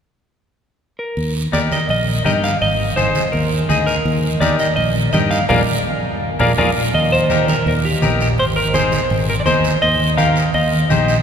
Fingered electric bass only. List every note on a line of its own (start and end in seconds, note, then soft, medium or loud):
1.17 1.46 D#2 medium
1.53 1.67 D#2 medium
1.89 2.18 A#1 medium
2.25 2.54 G2 medium
2.62 2.90 G#1 medium
2.98 3.12 G#1 medium
3.34 3.62 D#2 medium
3.69 3.98 D2 medium
4.05 4.34 D#2 medium
4.41 4.55 D#2 medium
4.77 5.06 A#1 medium
5.13 5.42 G2 medium
5.50 5.63 A#1 medium
6.40 6.53 A#1 medium
6.57 6.71 A#1 medium
6.94 7.51 D#2 medium
7.66 7.95 D#2 medium
8.02 8.39 A#1 medium
8.39 8.96 G#1 medium
9.11 9.39 G#1 loud
9.47 9.75 D#2 medium
9.83 10.40 D#2 medium
10.54 10.83 D#2 loud
10.91 11.19 A#1 medium